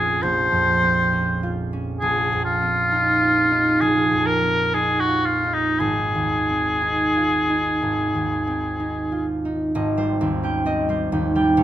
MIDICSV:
0, 0, Header, 1, 3, 480
1, 0, Start_track
1, 0, Key_signature, -4, "major"
1, 0, Tempo, 895522
1, 1077, Time_signature, 4, 2, 24, 8
1, 1557, Tempo, 918836
1, 2517, Tempo, 1054482
1, 2997, Tempo, 1005025
1, 3957, Tempo, 970874
1, 4917, Tempo, 917431
1, 5903, End_track
2, 0, Start_track
2, 0, Title_t, "Cor anglais"
2, 0, Program_c, 0, 69
2, 0, Note_on_c, 0, 68, 70
2, 119, Note_on_c, 0, 72, 82
2, 127, Note_off_c, 0, 68, 0
2, 841, Note_off_c, 0, 72, 0
2, 1075, Note_on_c, 0, 68, 79
2, 1298, Note_off_c, 0, 68, 0
2, 1312, Note_on_c, 0, 65, 86
2, 2029, Note_on_c, 0, 68, 74
2, 2036, Note_off_c, 0, 65, 0
2, 2266, Note_on_c, 0, 70, 73
2, 2274, Note_off_c, 0, 68, 0
2, 2517, Note_on_c, 0, 68, 72
2, 2524, Note_off_c, 0, 70, 0
2, 2634, Note_on_c, 0, 66, 68
2, 2641, Note_off_c, 0, 68, 0
2, 2751, Note_on_c, 0, 65, 66
2, 2757, Note_off_c, 0, 66, 0
2, 2878, Note_on_c, 0, 63, 59
2, 2885, Note_off_c, 0, 65, 0
2, 2997, Note_on_c, 0, 68, 70
2, 3004, Note_off_c, 0, 63, 0
2, 4681, Note_off_c, 0, 68, 0
2, 5903, End_track
3, 0, Start_track
3, 0, Title_t, "Harp"
3, 0, Program_c, 1, 46
3, 0, Note_on_c, 1, 34, 59
3, 0, Note_on_c, 1, 41, 44
3, 0, Note_on_c, 1, 58, 45
3, 0, Note_on_c, 1, 60, 47
3, 0, Note_on_c, 1, 61, 48
3, 0, Note_on_c, 1, 65, 49
3, 116, Note_off_c, 1, 34, 0
3, 122, Note_on_c, 1, 34, 52
3, 270, Note_off_c, 1, 41, 0
3, 277, Note_on_c, 1, 41, 42
3, 435, Note_off_c, 1, 60, 0
3, 442, Note_on_c, 1, 60, 49
3, 597, Note_off_c, 1, 61, 0
3, 603, Note_on_c, 1, 61, 49
3, 660, Note_off_c, 1, 58, 0
3, 761, Note_off_c, 1, 65, 0
3, 767, Note_on_c, 1, 65, 50
3, 921, Note_off_c, 1, 61, 0
3, 927, Note_on_c, 1, 61, 44
3, 1077, Note_off_c, 1, 34, 0
3, 1084, Note_on_c, 1, 34, 57
3, 1097, Note_off_c, 1, 41, 0
3, 1246, Note_on_c, 1, 41, 44
3, 1398, Note_off_c, 1, 60, 0
3, 1404, Note_on_c, 1, 60, 45
3, 1561, Note_on_c, 1, 63, 52
3, 1711, Note_off_c, 1, 65, 0
3, 1717, Note_on_c, 1, 65, 44
3, 1868, Note_off_c, 1, 63, 0
3, 1874, Note_on_c, 1, 63, 44
3, 2026, Note_off_c, 1, 34, 0
3, 2032, Note_on_c, 1, 34, 46
3, 2186, Note_off_c, 1, 41, 0
3, 2192, Note_on_c, 1, 41, 40
3, 2344, Note_off_c, 1, 60, 0
3, 2350, Note_on_c, 1, 60, 42
3, 2510, Note_off_c, 1, 63, 0
3, 2516, Note_on_c, 1, 63, 40
3, 2665, Note_off_c, 1, 65, 0
3, 2671, Note_on_c, 1, 65, 42
3, 2829, Note_off_c, 1, 63, 0
3, 2835, Note_on_c, 1, 63, 39
3, 2921, Note_off_c, 1, 61, 0
3, 2998, Note_on_c, 1, 32, 45
3, 3017, Note_off_c, 1, 34, 0
3, 3017, Note_off_c, 1, 41, 0
3, 3165, Note_on_c, 1, 39, 35
3, 3323, Note_off_c, 1, 60, 0
3, 3329, Note_on_c, 1, 60, 38
3, 3479, Note_off_c, 1, 63, 0
3, 3485, Note_on_c, 1, 63, 43
3, 3647, Note_off_c, 1, 65, 0
3, 3653, Note_on_c, 1, 65, 39
3, 3803, Note_off_c, 1, 63, 0
3, 3809, Note_on_c, 1, 63, 36
3, 3958, Note_off_c, 1, 32, 0
3, 3964, Note_on_c, 1, 32, 44
3, 4118, Note_off_c, 1, 39, 0
3, 4124, Note_on_c, 1, 39, 34
3, 4279, Note_off_c, 1, 60, 0
3, 4285, Note_on_c, 1, 60, 41
3, 4440, Note_off_c, 1, 63, 0
3, 4446, Note_on_c, 1, 63, 39
3, 4600, Note_off_c, 1, 65, 0
3, 4606, Note_on_c, 1, 65, 41
3, 4764, Note_off_c, 1, 63, 0
3, 4770, Note_on_c, 1, 63, 40
3, 4912, Note_off_c, 1, 32, 0
3, 4917, Note_on_c, 1, 32, 66
3, 4920, Note_on_c, 1, 75, 62
3, 4940, Note_off_c, 1, 39, 0
3, 4940, Note_off_c, 1, 65, 0
3, 5035, Note_on_c, 1, 55, 55
3, 5036, Note_on_c, 1, 72, 60
3, 5150, Note_off_c, 1, 60, 0
3, 5157, Note_on_c, 1, 39, 57
3, 5157, Note_on_c, 1, 60, 58
3, 5275, Note_on_c, 1, 61, 47
3, 5277, Note_on_c, 1, 79, 59
3, 5386, Note_off_c, 1, 60, 0
3, 5388, Note_off_c, 1, 75, 0
3, 5391, Note_on_c, 1, 60, 64
3, 5396, Note_on_c, 1, 75, 72
3, 5480, Note_off_c, 1, 61, 0
3, 5508, Note_off_c, 1, 55, 0
3, 5509, Note_off_c, 1, 72, 0
3, 5513, Note_on_c, 1, 55, 55
3, 5517, Note_on_c, 1, 72, 60
3, 5630, Note_off_c, 1, 39, 0
3, 5631, Note_off_c, 1, 63, 0
3, 5635, Note_on_c, 1, 39, 62
3, 5639, Note_on_c, 1, 63, 60
3, 5751, Note_off_c, 1, 79, 0
3, 5752, Note_off_c, 1, 55, 0
3, 5757, Note_on_c, 1, 55, 59
3, 5758, Note_on_c, 1, 79, 68
3, 5870, Note_on_c, 1, 34, 69
3, 5873, Note_on_c, 1, 73, 67
3, 5896, Note_off_c, 1, 75, 0
3, 5897, Note_off_c, 1, 39, 0
3, 5897, Note_off_c, 1, 55, 0
3, 5897, Note_off_c, 1, 63, 0
3, 5897, Note_off_c, 1, 79, 0
3, 5898, Note_off_c, 1, 32, 0
3, 5903, Note_off_c, 1, 34, 0
3, 5903, Note_off_c, 1, 60, 0
3, 5903, Note_off_c, 1, 72, 0
3, 5903, Note_off_c, 1, 73, 0
3, 5903, End_track
0, 0, End_of_file